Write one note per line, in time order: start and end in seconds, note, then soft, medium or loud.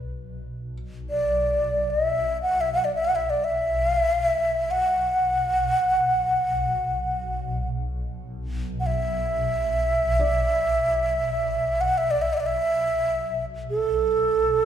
0.00 0.25 B1 medium
0.00 0.73 E5 soft
0.26 14.65 B1 medium
1.10 1.92 D5 medium
1.90 2.40 E5 medium
2.42 2.62 F#5 medium
2.61 2.73 E5 medium
2.73 2.86 F#5 medium
2.85 2.95 D5 medium
2.95 3.06 E5 medium
3.05 3.17 F#5 medium
3.15 3.31 E5 medium
3.30 3.46 D5 medium
3.44 3.88 E5 medium
3.88 4.00 F5 medium
4.00 4.12 E5 medium
4.12 4.24 F5 medium
4.24 4.72 E5 medium
4.71 7.68 F#5 medium
8.80 8.88 F#5 medium
8.86 11.82 E5 medium
10.19 14.65 D5 soft
11.81 11.99 F#5 medium
11.98 12.12 E5 medium
12.11 12.23 D5 medium
12.22 12.35 E5 medium
12.33 12.39 D5 medium
12.33 12.42 E5 medium
12.40 12.48 D5 medium
12.46 13.45 E5 medium
13.70 14.65 A4 medium